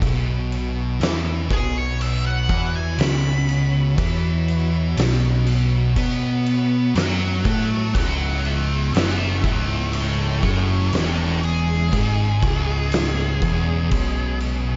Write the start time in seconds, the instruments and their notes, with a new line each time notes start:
0.01 picked electric bass B1, distorted electric guitar B2, string machine B3 F#4 C#5, kick, crash
0.52 crash
1.00 picked electric bass E2, distorted electric guitar E3, snare, crash
1.49 picked electric bass B1, distorted electric guitar B2, kick, crash
1.53 lead electric guitar G#4
1.78 lead electric guitar C#5
2.01 lead electric guitar E5, crash
2.26 lead electric guitar F#5
2.49 picked electric bass E2, distorted electric guitar E3, kick, crash
2.75 lead electric guitar G#5
2.98 picked electric bass C#2, distorted electric guitar C#3, lead electric guitar B5, snare, crash
3.49 crash
3.98 picked electric bass E2, distorted electric guitar E3, kick, crash
4.48 crash
4.97 picked electric bass B1, distorted electric guitar B2, snare, crash
5.47 crash
5.96 picked electric bass B2, distorted electric guitar B3, kick, crash
6.46 crash
6.95 picked electric bass F#2, distorted electric guitar F#3, lead electric guitar C#5 F#5, snare, crash
7.45 picked electric bass A2, distorted electric guitar A3, lead electric guitar C#5 F#5, kick, crash
7.95 picked electric bass C#1, distorted electric guitar C#2, string machine C#3 G#3 E4, lead electric guitar C#5 F#5, kick, crash
8.45 lead electric guitar G#4 E5, crash
8.94 picked electric bass F#1, distorted electric guitar F#2, lead electric guitar G#4 E5, snare, crash
9.44 picked electric bass C#1, distorted electric guitar C#2, lead electric guitar G#4 E5, kick, crash
9.93 lead electric guitar E4 C#5, crash
10.43 picked electric bass F#1, distorted electric guitar F#2, lead electric guitar E4 C#5, kick, crash
10.93 picked electric bass E1, distorted electric guitar E2, lead electric guitar E4 C#5, snare, crash
11.43 lead electric guitar G#4, crash
11.91 picked electric bass G#1, distorted electric guitar G#2, string machine C#4, kick, crash
12.42 picked electric bass C#1, distorted electric guitar C#2, kick, crash
12.92 snare, crash
13.42 picked electric bass E1, distorted electric guitar E2, kick, crash
13.91 picked electric bass B1, distorted electric guitar B2, kick, crash
14.40 crash